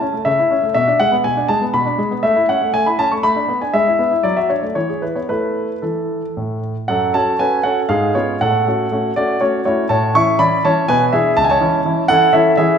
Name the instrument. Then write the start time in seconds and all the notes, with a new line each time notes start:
grand piano
Already playing: A5
0.01 C#4
0.13 A3
0.25 C#3 E5
0.39 E4
0.51 C#4
0.63 A3
0.74 B2 E5
0.87 D4
1.00 G#3 F#5
1.12 B3
1.24 B2 G#5
1.37 D4
1.48 G#3 A5
1.62 B3
1.74 B2 B5
1.85 D4
1.98 G#3
2.11 B3
2.23 A3 E5
2.36 E4
2.49 C#4 F#5
2.61 A3
2.74 A3 G#5
2.86 E4 B5
2.99 C#4 A5
3.12 A3 C#6
3.23 A3 B5
3.36 D4
3.48 B3
3.62 D4 G#5
3.73 G#3 E5
3.87 E4
3.99 B3
4.11 E4
4.23 F#3 D5
4.37 F#4 E5
4.50 D4 C#5
4.62 A3 D5
4.75 E3 C#5
4.89 G#4
5.02 E4 B4
5.15 B3 C#5
5.29 A3 E4 A4 B4
5.82 E3 A4
6.37 A2
6.88 F#2 A4 F#5
7.14 C#4 F#4 A4 C#5 A5
7.39 C#4 F#4 A4 B4 G#5
7.63 C#4 F#4 A4 F#5
7.89 G#2 G#4 F5
8.15 B3 C#4 F4 G#4 C#5
8.41 A2 A4 F#5
8.67 A3 C#4 F#4
8.92 A3 C#4 F#4
9.16 A3 C#4 F#4 D5
9.41 A3 C#4 F#4 C#5
9.65 A3 C#4 E4 F#4 C#5
9.89 A2 C#5 A5
10.15 E3 C#4 E4 E5 C#6
10.39 E3 C#4 E4 D5 B5
10.65 E3 C#4 E4 C#5 A5
10.88 B2 B4 G#5
11.13 E3 D4 E4 G#4 E5
11.37 C#2 A5
11.44 G#5
11.49 C#5 A5
11.61 E3 C#4 E4
11.85 E3 C#4 E4
12.08 E3 C#4 E4 A4 F#5
12.33 E3 C#4 E4 A4 E5
12.57 E3 C#4 E4 G#4 E5